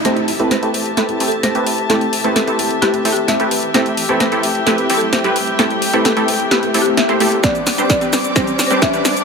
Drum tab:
HH |xxoxxxoxxxoxxxox|xxoxxxoxxxoxxxox|xxoxxxoxxxoxxxox|xxoxxxoxxxoxxxox|
SH |----------------|----------------|----------------|----------------|
SD |o---o---o---o---|o---o---o---o---|o---o---o---o---|o---o---o---o---|
BD |----------------|----------------|----------------|----------------|

HH |xxoxxxoxxxoxxxox|
SH |xxxxxxxxxxxxxxxx|
SD |o-o-o-o-o-o-o-o-|
BD |o---o---o---o---|